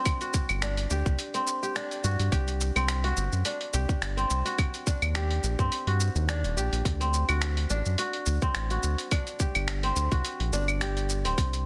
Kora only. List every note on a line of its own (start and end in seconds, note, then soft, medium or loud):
0.00 1.34 C4 medium
0.00 0.62 D4 medium
0.00 0.21 F#4 medium
0.21 0.97 F#4 medium
0.62 1.75 D4 medium
0.91 1.62 G4 medium
1.34 2.75 C4 medium
1.63 2.10 G4 medium
1.76 3.44 D4 medium
2.04 2.38 F#4 medium
2.32 3.10 G4 medium
2.76 4.17 C4 medium
3.04 3.80 F#4 medium
3.45 4.86 D4 medium
3.74 4.51 G4 medium
4.17 5.59 C4 medium
4.45 5.21 F#4 medium
4.87 6.28 D4 medium
5.15 5.93 G4 medium
5.59 7.00 C4 medium
5.87 6.63 F#4 medium
6.29 7.70 D4 medium
6.57 7.35 G4 medium
7.00 8.42 C4 medium
7.29 7.98 F#4 medium
7.70 9.11 D4 medium
7.99 8.70 F#4 medium
8.42 9.83 C4 medium
8.71 9.46 F#4 medium
9.12 10.53 D4 medium
9.40 10.18 G4 medium
9.84 11.24 C4 medium
10.12 10.87 F#4 medium
10.53 11.66 D4 medium
10.81 11.66 G4 medium
11.25 11.66 C4 medium